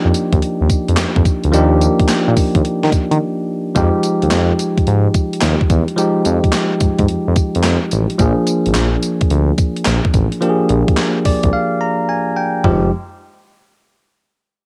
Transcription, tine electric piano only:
Already playing: F3 A#3 D4 D#4 G4
1.52 F3 A#3 D4 D#4 G4
3.75 F3 G#3 D#4 G4
5.96 F3 G#3 D#4 G4
8.19 F3 A#3 D4 G#4
10.41 F3 A#3 D4 G4
10.50 G#4
11.26 D5
11.53 F5
11.81 A#5
12.09 G#5
12.36 G5
12.64 F3 G#3 D#4 G4

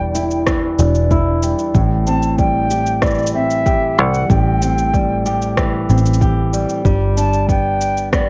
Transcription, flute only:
Already playing: G5
2.07 A5
2.38 G5
3.03 D5
3.34 E5
3.98 F#5
4.30 G5
7.17 A5
7.49 G5
8.13 D5

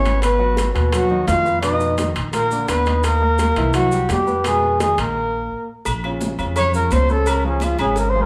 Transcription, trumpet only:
Already playing: C#5
0.23 B4
0.93 F#4
1.27 F5
1.62 D#5
2.34 A#4
2.69 B4
3.04 A#4
3.75 F#4
4.11 G4
4.47 G#4
4.82 G#4
5.00 A#4
6.57 C#5
6.75 A#4
6.93 C5
7.11 A4
7.29 A#4
7.46 C#4
7.63 F4
7.80 G#4
7.98 A#4
8.10 C5
8.22 A#4

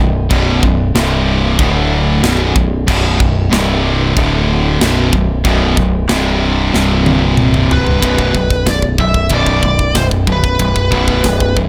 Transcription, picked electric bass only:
0.00 B0
0.31 B0
0.63 B0
0.95 C1
1.59 D1
2.23 B0
2.56 B0
2.89 B0
3.20 B0
3.51 C1
4.17 D1
4.81 B0
5.13 B0
5.45 B0
5.78 B0
6.09 C1
6.74 C1
8.03 B0
8.35 B0
8.67 B0
8.99 B0
9.31 B0
9.63 B0
9.96 B0
10.27 B0
10.60 B0
10.92 B0
11.24 B0
11.57 B0

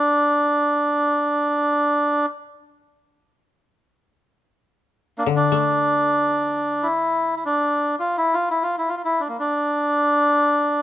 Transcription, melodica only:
Already playing: D4
5.18 A#3 D4
5.36 D4
6.83 E4
7.36 E4
7.45 D4
7.99 F4
8.18 E4
8.34 F4
8.51 E4
8.63 F4
8.78 E4
8.89 F4
8.97 F4
9.05 E4
9.20 D4
9.28 A#3
9.39 D4

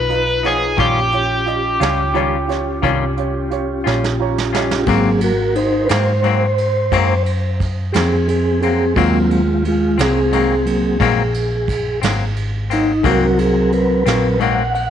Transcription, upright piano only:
0.09 D#4 F4 B4
0.44 D#4 F4 C#5
0.78 F4 G4 C#5
1.13 F4 G4 C#5
1.46 F4 G4 D#5
1.80 F4 G4 C#5
2.14 F4 G4 C#5
2.48 F4 G4 C#5
2.82 F4 G4 C#5
3.17 F4 G4 C#5
3.50 F4 G4 C#5
3.85 F4 G4 C#5
4.19 F4 G4 C#5 A#5
4.55 F4 G4 C#5 D#5

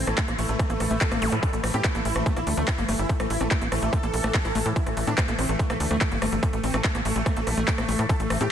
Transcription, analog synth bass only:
0.07 A1
0.28 A1
0.39 A1
0.49 A1
0.70 A1
0.80 A#1
0.91 A1
1.11 A1
1.22 A1
1.32 A2
1.53 A1
1.64 A1
1.74 A2
1.95 A1
2.05 A1
2.16 A1
2.36 A#1
2.47 D2
2.57 D2
2.78 G1
2.89 G1
2.99 G1
3.20 A1
3.30 A1
3.41 A1
3.62 A1
3.72 A1
3.82 A1
4.03 A1
4.14 A#1
4.24 A1
4.45 A1
4.55 A1
4.66 A2
4.87 A1
4.97 A1
5.07 A2
5.28 A1
5.39 A1
5.49 A1
5.70 A#1
5.80 D2
5.91 D2
6.11 G1
6.22 G1
6.32 G1
6.53 A1
6.64 A1
6.74 A1
6.95 A1
7.05 A1
7.16 A1
7.36 A1
7.47 A#1
7.57 A1
7.78 A1
7.89 A1
7.99 A2
8.20 A1
8.30 A1
8.41 A2

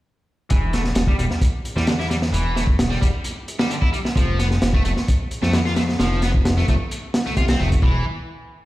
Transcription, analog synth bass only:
0.51 E1
0.96 E1
1.19 E1
1.76 E2
2.33 E1
2.79 E1
3.02 E1
4.16 F1
4.62 F1
4.85 F1
5.43 F2
5.99 F1
6.45 F1
6.68 F1
7.26 C2
7.37 C2
7.60 F1
7.82 E1

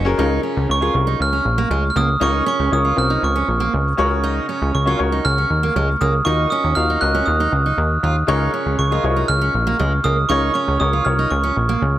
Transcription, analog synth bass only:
Already playing: F#1
0.19 C#2
0.57 C#2
0.69 C#2
0.95 C2
1.20 C#2
1.45 A#1
1.70 C#2
1.96 C#2
2.21 C#2
2.60 C#2
2.72 C#2
2.97 C2
3.23 C#2
3.48 A#1
3.74 C#2
3.99 C#2
4.62 C#2
4.75 C#2
5.00 C#2
5.25 C#2
5.50 D#2
5.76 C#2
6.01 C#2
6.26 D#2
6.64 D#2
6.77 D#2
7.02 C#2
7.28 D#2
7.52 C#2
7.78 D#2
8.03 D#2
8.28 C#2
8.66 C#2
8.79 C#2
9.04 C2
9.29 C#2
9.55 A#1
9.80 C#2
10.05 C#2
10.30 C#2
10.68 C#2
10.81 C#2
11.06 C2
11.31 C#2
11.57 A#1
11.82 C#2

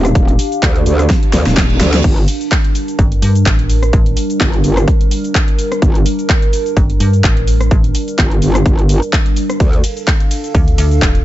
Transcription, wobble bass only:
Already playing: D#1
0.15 D#1
0.62 D2
0.86 D2
1.33 D2
1.46 D#1
1.81 D2
2.04 G1
4.40 G1
4.64 G1
5.82 G1
8.18 G1
8.42 G1
8.66 G1
9.60 D2

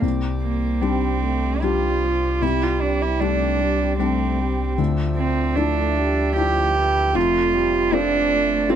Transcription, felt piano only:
0.01 C2
0.82 G3 D4 G4
1.62 G3 D4 G4
2.42 C2
3.21 G3 D4 G4
3.99 G3 D4 G4
4.78 D2
5.56 F3 D4 E4
6.36 F3 D4 E4
7.15 F2
7.92 A3 C4 F4
8.69 A3 C4 F4

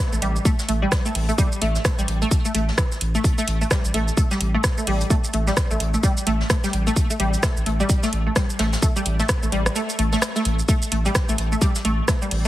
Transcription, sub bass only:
0.13 A1
0.22 A1
0.69 A1
1.15 A1
1.62 A1
1.99 A1
2.08 A1
2.55 A1
3.01 A1
3.48 A1
3.85 A1
3.94 A1
4.41 A1
4.87 A1
5.34 A1
5.71 A1
5.80 A1
6.27 A1
6.73 A1
7.20 A1
7.57 A1
7.66 A1
8.13 A1
8.59 A1
9.06 A1
9.43 A1
9.52 A1
9.99 A1
10.45 A1
10.92 A1
11.29 A1
11.38 A1
11.85 A1
12.31 A1

